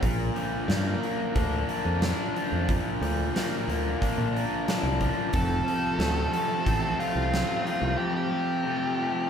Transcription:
0.02 0.29 A#1 medium
0.02 0.66 A#2 medium
0.02 1.68 A#2 medium
0.02 kick loud
0.02 open hi-hat medium
0.34 1.01 D3 medium
0.34 2.34 F3 medium
0.34 open hi-hat soft
0.67 0.95 G2 medium
0.67 2.34 A#2 medium
0.67 1.35 A#3 medium
0.67 snare loud
0.67 open hi-hat medium
1.00 2.68 D3 medium
1.00 1.68 A#3 medium
1.00 open hi-hat soft
1.35 1.62 D2 medium
1.35 3.01 A#3 medium
1.35 2.01 D4 medium
1.35 kick medium
1.35 open hi-hat medium
1.68 3.34 A#3 medium
1.68 2.33 D4 medium
1.68 open hi-hat soft
1.85 2.12 F2 medium
2.01 3.67 D4 medium
2.01 4.67 F4 medium
2.01 snare loud
2.01 open hi-hat medium
2.34 3.01 F3 medium
2.34 4.00 D4 medium
2.34 open hi-hat soft
2.52 2.78 F2 medium
2.68 3.34 A#2 medium
2.68 4.34 A#2 medium
2.68 kick loud
2.68 open hi-hat medium
3.01 3.28 D2 medium
3.01 3.66 D3 medium
3.01 4.99 F3 medium
3.01 open hi-hat medium
3.34 5.00 A#2 medium
3.34 3.99 A#3 medium
3.34 snare medium
3.34 open hi-hat medium
3.68 3.94 D2 medium
3.68 5.33 D3 medium
3.68 4.34 A#3 medium
3.68 open hi-hat medium
4.00 5.33 A#3 medium
4.00 4.66 D4 medium
4.00 kick medium
4.00 open hi-hat medium
4.17 4.44 A#2 medium
4.33 5.34 A#3 medium
4.33 5.00 D4 medium
4.33 open hi-hat soft
4.67 5.33 D4 medium
4.67 7.32 F4 medium
4.67 snare loud
4.67 open hi-hat medium
4.83 5.10 C2 medium
5.00 5.64 F3 medium
5.00 5.34 D4 medium
5.00 kick medium
5.00 open hi-hat soft
5.33 5.60 F1 medium
5.33 6.99 F2 medium
5.33 6.30 A4 medium
5.33 kick loud
5.33 open hi-hat medium
5.64 7.32 C3 medium
5.64 7.64 F3 medium
5.64 open hi-hat soft
5.98 6.26 D2 medium
5.98 7.64 C3 medium
5.98 6.64 A3 medium
5.98 snare loud
5.98 open hi-hat medium
6.31 8.98 F3 medium
6.31 6.97 A3 medium
6.31 6.97 A4 medium
6.31 open hi-hat soft
6.64 6.93 A1 medium
6.64 8.31 A3 medium
6.64 7.30 C4 medium
6.64 kick medium
6.64 open hi-hat medium
6.98 8.64 A3 medium
6.98 7.65 C4 medium
6.98 7.96 F4 medium
6.98 open hi-hat soft
7.15 7.42 C2 medium
7.31 8.97 C4 medium
7.31 8.98 F4 medium
7.31 snare loud
7.31 open hi-hat medium
7.65 8.29 F3 medium
7.65 9.30 C4 medium
7.65 open hi-hat soft
7.82 7.95 C2 medium
7.97 9.30 F2 medium
7.97 8.14 G4 medium
8.15 9.28 G4 medium
8.30 9.30 C3 medium
8.30 9.30 F3 medium
8.64 9.30 C3 medium
8.64 9.30 A3 medium
8.98 9.30 F3 medium
8.98 9.30 A3 medium

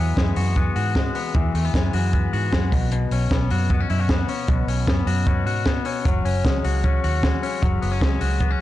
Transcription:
0.00 0.14 E2 medium
0.00 1.34 E3 medium
0.00 0.17 F#3 medium
0.00 0.56 B3 medium
0.17 0.34 F#2 medium
0.17 0.95 G#3 medium
0.17 kick loud
0.17 snare medium
0.17 closed hi-hat medium
0.36 0.70 F#2 medium
0.36 0.76 F#4 medium
0.36 open hi-hat medium
0.56 1.15 B3 medium
0.56 kick medium
0.56 closed hi-hat soft
0.76 1.09 G#2 medium
0.76 1.94 F#4 medium
0.76 open hi-hat medium
0.95 1.74 G#3 medium
0.95 kick loud
0.95 snare loud
0.95 closed hi-hat medium
1.15 1.55 B3 medium
1.15 open hi-hat medium
1.35 1.52 E2 medium
1.35 2.76 E3 medium
1.35 kick loud
1.35 closed hi-hat medium
1.54 1.71 E2 medium
1.54 1.65 A3 medium
1.54 open hi-hat medium
1.65 2.12 B3 soft
1.74 1.91 F#2 medium
1.74 2.51 G#3 medium
1.74 kick medium
1.74 snare medium
1.74 closed hi-hat medium
1.93 2.27 F#2 medium
1.93 2.33 F#4 medium
1.93 open hi-hat medium
2.13 3.12 B3 medium
2.13 kick medium
2.13 closed hi-hat medium
2.33 2.49 G#2 medium
2.33 3.51 F#4 medium
2.33 open hi-hat medium
2.52 2.69 F#2 medium
2.52 2.76 G#3 medium
2.52 kick loud
2.52 snare loud
2.52 closed hi-hat medium
2.72 3.05 B1 medium
2.72 2.91 B2 medium
2.72 kick loud
2.72 open hi-hat medium
2.92 4.47 B2 medium
2.92 closed hi-hat medium
3.11 3.28 B1 medium
3.11 3.70 C#4 medium
3.11 open hi-hat medium
3.31 3.48 B1 medium
3.31 3.69 B3 medium
3.31 kick loud
3.31 snare loud
3.31 closed hi-hat medium
3.50 3.84 F#2 medium
3.50 3.90 F#4 medium
3.50 open hi-hat medium
3.70 3.80 B3 medium
3.70 kick medium
3.70 closed hi-hat medium
3.80 4.28 C#4 medium
3.90 4.23 F#2 medium
3.90 4.00 E4 medium
3.90 open hi-hat medium
4.00 5.06 F#4 soft
4.09 4.86 B3 medium
4.09 kick loud
4.09 snare loud
4.09 closed hi-hat medium
4.28 4.68 C#4 medium
4.28 open hi-hat medium
4.48 4.65 B1 loud
4.48 6.05 B2 medium
4.48 kick loud
4.48 closed hi-hat medium
4.67 4.84 B1 medium
4.67 5.26 C#4 soft
4.67 open hi-hat medium
4.87 5.04 F#2 medium
4.87 5.65 B3 medium
4.87 kick loud
4.87 snare medium
4.87 closed hi-hat medium
5.06 5.46 F#2 medium
5.06 5.46 F#4 medium
5.06 open hi-hat medium
5.27 5.85 C#4 medium
5.27 kick medium
5.27 closed hi-hat medium
5.46 5.79 G#2 medium
5.46 6.48 F#4 medium
5.46 open hi-hat medium
5.66 6.09 B3 medium
5.66 kick medium
5.66 snare loud
5.66 closed hi-hat medium
5.85 6.25 C#4 medium
5.85 open hi-hat medium
6.05 6.22 F#1 medium
6.05 7.61 F#3 medium
6.05 kick loud
6.05 closed hi-hat medium
6.25 6.41 F#1 medium
6.25 6.84 C#4 medium
6.25 open hi-hat medium
6.45 6.61 C#2 medium
6.45 7.23 G#3 medium
6.45 kick loud
6.45 snare medium
6.45 closed hi-hat medium
6.64 6.98 C#2 medium
6.64 7.03 F#4 medium
6.64 open hi-hat medium
6.84 7.43 C#4 medium
6.84 kick medium
6.84 closed hi-hat soft
7.04 7.37 D#2 medium
7.04 8.20 F#4 medium
7.04 open hi-hat medium
7.23 8.01 G#3 medium
7.23 kick loud
7.23 snare loud
7.23 closed hi-hat medium
7.43 7.82 C#4 medium
7.43 open hi-hat medium
7.62 7.79 F#1 medium
7.62 8.61 F#3 medium
7.62 kick loud
7.62 closed hi-hat medium
7.82 7.99 F#1 medium
7.82 7.92 B3 medium
7.82 open hi-hat medium
7.92 8.40 C#4 soft
8.01 8.18 C#2 medium
8.01 8.61 G#3 medium
8.01 kick loud
8.01 snare loud
8.01 closed hi-hat medium
8.21 8.54 C#2 medium
8.21 8.59 F#4 medium
8.21 open hi-hat medium
8.40 8.51 B3 medium
8.40 kick medium
8.40 closed hi-hat medium
8.51 8.61 C#4 medium

